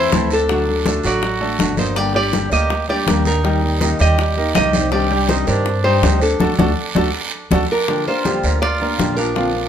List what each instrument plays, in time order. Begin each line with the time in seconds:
Already playing: nylon-string guitar A3 C4 E4 C5, muted trumpet E4
0.11 upright bass D2, nylon-string guitar E3 A3 C4 E4, grand piano A3 A4 C5, high bongo, low bongo, high conga, short guiro
0.31 nylon-string guitar A3 C4 E4 A4, muted trumpet D4, high bongo, high conga, short guiro
0.49 nylon-string guitar D3 A3 D4 F#4, grand piano F#3 F#4 F#5, high bongo, high conga, long guiro
0.68 nylon-string guitar A3 D4 F#4, high conga
0.86 nylon-string guitar D3 A3 D4 F#4, grand piano A3 A4 D5, high bongo, high conga, short guiro
1.03 upright bass A1, grand piano F#3 F#4 F#5, muted trumpet F#4, nylon-string guitar D5, high bongo, high conga, short guiro
1.22 muted nylon-string guitar stroke, high bongo, high conga, long guiro
1.40 grand piano A3 A4 D5, nylon-string guitar A3 D4 F#4, high conga
1.59 upright bass G1, nylon-string guitar D3 A3 D4 F#4, high bongo, low bongo, high conga, short guiro
1.77 nylon-string guitar A3 D4 F#4 C5, grand piano A#3 A#4 D5, muted trumpet D#4, high bongo, high conga, short guiro
1.96 nylon-string guitar D3 G3 A#3 D4 G4 D5, muted trumpet G4, high bongo, high conga, long guiro
2.14 grand piano G3 G4 G5, nylon-string guitar A#3 G4 D5, muted trumpet G4, high conga
2.32 nylon-string guitar D3 G3 A#3 D4 G4, high bongo, high conga, short guiro
2.51 upright bass D2, grand piano A#3 A#4 D6, muted trumpet G4, nylon-string guitar D#5, high bongo, high conga, short guiro
2.69 muted nylon-string guitar stroke, high bongo, high conga, long guiro
2.88 grand piano G3 G4 G5, nylon-string guitar A#3 D4 G4 D5, muted trumpet G4, high bongo, high conga
3.07 upright bass D#2, nylon-string guitar D3 G3 A#3 D4 G4, grand piano A#3 A#4 D5, high bongo, low bongo, high conga, short guiro
3.25 nylon-string guitar A#3 D4 G4 A#4, muted trumpet D#4, high bongo, high conga, short guiro
3.43 nylon-string guitar D#3 G3 A#3 D#4 G4, grand piano G3 G4 G5, high bongo, high conga, long guiro
3.62 nylon-string guitar A#3 D#4 G4, high conga
3.81 nylon-string guitar D#3 G3 A#3 D#4 G4, grand piano A#3 A#4 D#5, high bongo, high conga, short guiro
3.99 upright bass D#2, grand piano G3 G4 G5, muted trumpet G4, nylon-string guitar D#5, high bongo, high conga, short guiro
4.18 muted nylon-string guitar stroke, high bongo, high conga, long guiro
4.36 grand piano A#3 A#4 D#5, nylon-string guitar A#3 D#4 G4, high conga
4.55 upright bass C2, nylon-string guitar D#3 G3 A#3 D#4 G4 D#5, muted trumpet G4, high bongo, low bongo, high conga, short guiro
4.73 nylon-string guitar A#3 D#4 G4, grand piano C4 C5 D5, high bongo, high conga, short guiro
4.92 nylon-string guitar C3 D#3 G3 D4 G4 D5, muted trumpet G4, high bongo, high conga, long guiro
5.11 grand piano G3 G4 G5, nylon-string guitar D4 G4, high conga
5.29 nylon-string guitar C3 D#3 G3 D4 G4 C5, muted trumpet D#4, high bongo, high conga, short guiro
5.47 upright bass G2, grand piano C4 C5 D5, muted trumpet D4, nylon-string guitar A#4, high bongo, high conga, short guiro
5.66 muted nylon-string guitar stroke, high bongo, high conga, long guiro
5.84 grand piano G3 G4 G5, nylon-string guitar G3 D4 G4 C5, muted trumpet D#4, high bongo, high conga
6.02 upright bass D2, nylon-string guitar C3 D#3 G3 D4 G4, grand piano C4 C5 D5, high bongo, low bongo, high conga, short guiro
6.21 nylon-string guitar G3 D4 G4 A4, muted trumpet D4, high bongo, high conga, short guiro
6.39 upright bass D2, nylon-string guitar A3 D4 F#4, grand piano F#4 A4 D5, high bongo, high conga, long guiro
6.59 upright bass D2, nylon-string guitar A3 D4 F#4, grand piano F#4 A4 D5, high bongo, high conga, long guiro
6.95 upright bass D2, nylon-string guitar A3 D4 F#4, grand piano F#4 A4 D5, high bongo, high conga, long guiro
7.51 upright bass D2, nylon-string guitar A3 D4 F#4, grand piano F#4 A4 D5, high bongo, high conga, long guiro
7.71 muted trumpet D4, nylon-string guitar A#4
7.88 nylon-string guitar D3 F3 A#3 D4 G4, high bongo, high conga, long guiro
8.07 grand piano A#3 A#4 D5, nylon-string guitar A#3 D4 G4 C5, muted trumpet F4, high conga
8.25 nylon-string guitar D3 F3 A#3 D4 G4, grand piano G3 G4 G5, high bongo, high conga, short guiro
8.43 upright bass D2, grand piano A#3 A#4 D5, high bongo, high conga, short guiro
8.62 muted trumpet F4, nylon-string guitar D5, muted nylon-string guitar stroke, high bongo, high conga, long guiro
8.80 grand piano A#3 A#4 D5, nylon-string guitar A#3 D4 G4, high bongo, high conga
8.98 upright bass A#1, nylon-string guitar D3 F3 A#3 D4 G4, high bongo, low bongo, high conga, short guiro
9.17 grand piano F3 F4 F5, nylon-string guitar A#3 D4 G4 A#4, muted trumpet D4, high bongo, high conga, short guiro
9.35 nylon-string guitar D3 A#3 C4 F4, grand piano F3 F4 F5, high bongo, high conga, long guiro
9.54 nylon-string guitar C4 F4, high conga